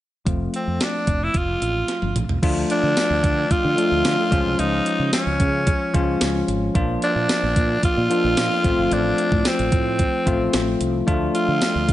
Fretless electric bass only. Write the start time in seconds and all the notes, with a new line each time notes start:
0.27 F1
0.67 F2
1.08 F1
1.34 F1
1.62 A1
2.02 G1
2.16 A#1
2.29 C2
2.43 D2
2.83 D3
3.10 D2
3.24 D3
3.51 muted fretless electric bass stroke
3.65 D3
3.91 D2
4.05 D3
4.32 C#2
4.46 C2
4.59 C#2
4.99 C#3
5.27 C#2
5.40 C#3
5.95 C#2
6.21 C#2
6.48 G#1
6.75 A#1
7.16 A#2
7.43 A#1
7.56 A#2
7.83 muted fretless electric bass stroke
7.97 A#2
8.24 A#1
8.38 A#2
8.64 A1
8.78 G1
8.91 A1
9.32 A2
9.59 A1
9.72 A2
10.27 A1
10.54 A1
10.81 C2
11.08 D2
11.48 D3
11.75 D2
11.89 D3